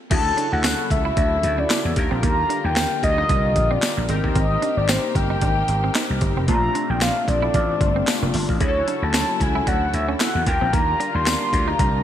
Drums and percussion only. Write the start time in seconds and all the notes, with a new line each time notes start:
0.11 kick, closed hi-hat, crash
0.38 closed hi-hat
0.64 snare, clap, closed hi-hat, tambourine
0.91 kick, closed hi-hat
1.17 kick, closed hi-hat
1.43 closed hi-hat
1.70 snare, clap, closed hi-hat, tambourine
1.96 kick, closed hi-hat
2.23 kick, closed hi-hat
2.50 closed hi-hat
2.76 snare, clap, closed hi-hat, tambourine
3.03 kick, closed hi-hat
3.29 kick, closed hi-hat
3.56 kick, closed hi-hat
3.82 snare, clap, closed hi-hat, tambourine
4.09 closed hi-hat
4.24 kick
4.35 kick, closed hi-hat
4.62 closed hi-hat
4.88 snare, clap, closed hi-hat, tambourine
5.15 kick, closed hi-hat
5.41 kick, closed hi-hat
5.68 closed hi-hat
5.95 snare, clap, closed hi-hat, tambourine
6.21 kick, closed hi-hat
6.48 kick, closed hi-hat
6.75 closed hi-hat
7.01 snare, clap, closed hi-hat, tambourine
7.28 kick, closed hi-hat
7.54 kick, closed hi-hat
7.81 kick, closed hi-hat
8.07 snare, clap, closed hi-hat, tambourine
8.34 open hi-hat
8.49 kick
8.60 kick, closed hi-hat
8.88 closed hi-hat
9.14 snare, clap, closed hi-hat, tambourine
9.40 kick, closed hi-hat
9.67 kick, closed hi-hat
9.94 closed hi-hat
10.20 snare, clap, closed hi-hat, tambourine
10.46 kick, closed hi-hat
10.73 kick, closed hi-hat
11.00 closed hi-hat
11.26 snare, clap, closed hi-hat, tambourine
11.53 kick, closed hi-hat
11.79 kick, closed hi-hat